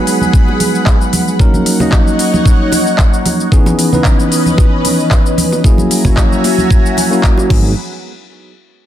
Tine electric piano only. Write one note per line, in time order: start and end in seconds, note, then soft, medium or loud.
0.00 1.37 F#3 medium
0.00 1.37 G#3 medium
0.00 1.37 B3 medium
0.00 1.37 D#4 medium
0.00 1.38 B4 medium
1.40 1.77 F#3 medium
1.40 1.77 A#3 medium
1.40 1.77 C#4 medium
1.40 1.77 D#4 medium
1.40 1.77 A#4 loud
1.80 3.49 F#3 medium
1.80 3.49 A#3 medium
1.80 3.49 C#4 medium
1.80 3.50 D#4 medium
1.80 3.50 D#5 medium
3.52 3.89 E3 medium
3.52 3.89 B3 medium
3.52 3.89 C#4 medium
3.52 3.90 D#4 medium
3.52 3.90 G#4 loud
3.92 5.61 E3 medium
3.92 5.62 B3 medium
3.92 5.62 C#4 medium
3.92 5.62 D#4 medium
3.92 5.62 B4 medium
5.65 6.02 F#3 medium
5.65 6.02 A#3 medium
5.65 6.02 C#4 medium
5.65 6.02 E4 medium
5.65 6.02 G#4 medium
6.04 7.08 F#3 medium
6.04 7.08 A#3 medium
6.04 7.09 C#4 medium
6.04 7.09 E4 medium
6.04 7.09 C#5 medium
7.11 7.48 F#3 medium
7.11 7.50 A#3 medium
7.11 7.51 C#4 medium
7.11 7.51 E4 medium
7.11 7.51 F#4 medium
7.49 7.70 F#3 medium
7.49 7.70 G#3 medium
7.49 7.71 B3 medium
7.49 7.71 D#4 medium
7.49 7.71 G#4 medium